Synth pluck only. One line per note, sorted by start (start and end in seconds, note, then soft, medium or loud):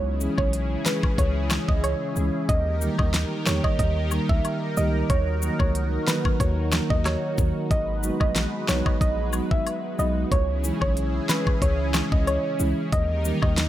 0.38 0.48 C#5 medium
0.86 0.98 B4 medium
1.19 1.30 C#5 medium
1.68 1.79 D#5 medium
1.84 2.31 C#5 medium
2.49 2.61 D#5 loud
2.99 3.09 D#5 medium
3.47 3.58 C#5 medium
3.64 3.74 D#5 medium
3.79 3.91 D#5 medium
4.29 4.40 E5 medium
4.77 4.89 D#5 medium
5.10 5.21 C#5 medium
5.60 5.70 C#5 medium
6.08 6.19 B4 medium
6.40 6.52 C#5 medium
6.90 7.01 D#5 medium
7.05 7.52 C#5 medium
7.71 7.82 D#5 loud
8.21 8.31 D#5 medium
8.69 8.80 C#5 medium
8.86 8.96 D#5 medium
9.01 9.13 D#5 medium
9.51 9.61 E5 medium
9.99 10.11 D#5 medium
10.32 10.43 C#5 loud
10.82 10.92 C#5 medium
11.29 11.41 B4 medium
11.62 11.74 C#5 medium
12.12 12.22 D#5 medium
12.27 12.74 C#5 loud
12.93 13.04 D#5 loud
13.42 13.53 D#5 medium